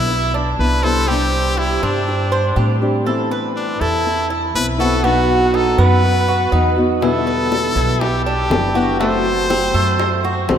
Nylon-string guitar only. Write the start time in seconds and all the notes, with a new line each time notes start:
0.09 muted nylon-string guitar stroke
0.59 D3 G3 B3 E4
0.84 D3 G3 B3 E4
1.09 C3 G3 C4 D4 G4
2.07 muted nylon-string guitar stroke
2.56 G3 C4 D4 G4
2.81 G3 C4 D4 G4
3.05 E3 B3 C4 E4
4.06 muted nylon-string guitar stroke
4.54 E3 B3 C4 E4
4.78 B3 C4 E4
5.02 B2 F#3 B3 D#4 F#4
6.03 muted nylon-string guitar stroke
6.51 F#3 B3 D#4 F#4
6.76 F#3 B3 D#4 F#4
7.01 B2 D3 G3 B3 E4
8.01 muted nylon-string guitar stroke
8.50 D3 G3 B3 E4
8.74 D3 G3 B3 E4
8.99 F#3 A3 C4 F#4
9.99 muted nylon-string guitar stroke
10.48 F#3 A3 C4 F#4